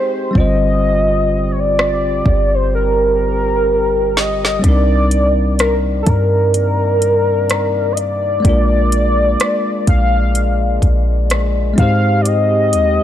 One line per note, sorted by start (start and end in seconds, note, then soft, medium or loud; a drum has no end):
0.00 0.29 G#3 medium
0.00 0.31 G#3 medium
0.00 0.30 C4 medium
0.00 0.31 C4 medium
0.00 0.31 D#4 medium
0.00 0.32 G4 medium
0.00 0.34 C5 medium
0.00 0.39 C5 medium
0.31 4.10 G3 medium
0.31 4.11 C4 medium
0.35 2.22 G1 loud
0.35 4.12 D3 medium
0.35 4.60 G3 medium
0.35 4.60 C4 medium
0.35 2.24 F4 medium
0.35 4.13 F4 medium
0.35 1.53 D#5 loud
0.35 kick loud
0.40 4.15 C5 medium
1.52 1.61 C#5 medium
1.59 2.56 D5 loud
1.79 cross-stick loud
2.25 4.60 G1 loud
2.25 4.61 G4 medium
2.25 kick medium
2.54 2.74 C5 medium
2.75 4.19 A#4 loud
4.17 4.66 D#5 loud
4.17 snare loud
4.45 snare medium
4.59 8.39 G3 medium
4.59 8.40 C4 medium
4.63 6.03 C2 loud
4.63 8.41 C3 medium
4.63 8.41 D#3 medium
4.63 11.74 A#3 medium
4.63 8.41 D4 medium
4.63 8.42 D#4 medium
4.63 11.74 D5 medium
4.63 5.60 D5 loud
4.63 kick loud
4.63 closed hi-hat medium
4.69 8.43 A#4 medium
5.11 closed hi-hat medium
5.59 5.74 A#4 medium
5.59 cross-stick loud
5.59 closed hi-hat medium
6.02 6.10 A4 medium
6.06 8.41 G2 loud
6.06 7.94 A#4 loud
6.06 kick medium
6.06 closed hi-hat medium
6.54 closed hi-hat medium
7.02 closed hi-hat medium
7.50 cross-stick loud
7.50 closed hi-hat medium
7.92 8.00 D#5 medium
7.97 9.88 D5 loud
7.97 closed hi-hat medium
8.40 11.72 G#3 medium
8.40 11.73 A#3 medium
8.45 9.36 A#1 loud
8.45 13.03 G#3 medium
8.45 11.74 D4 medium
8.45 11.75 F4 medium
8.45 kick loud
8.45 closed hi-hat medium
8.49 11.76 A#4 medium
8.92 closed hi-hat medium
9.40 cross-stick loud
9.40 closed hi-hat medium
9.87 10.79 A#1 loud
9.87 10.79 F5 loud
9.87 kick medium
9.87 closed hi-hat medium
10.35 closed hi-hat medium
10.82 11.74 A#1 loud
10.82 kick medium
10.82 closed hi-hat medium
11.30 cross-stick loud
11.30 closed hi-hat medium
11.74 13.03 G#3 medium
11.74 13.03 C4 medium
11.78 12.75 G#2 loud
11.78 13.03 C4 medium
11.78 13.03 D#4 medium
11.78 13.03 G4 medium
11.78 12.23 F5 loud
11.78 kick loud
11.78 closed hi-hat medium
11.83 13.03 C5 medium
12.21 12.29 D5 medium
12.25 13.03 D#5 loud
12.25 closed hi-hat medium
12.73 13.00 D#2 loud
12.73 closed hi-hat medium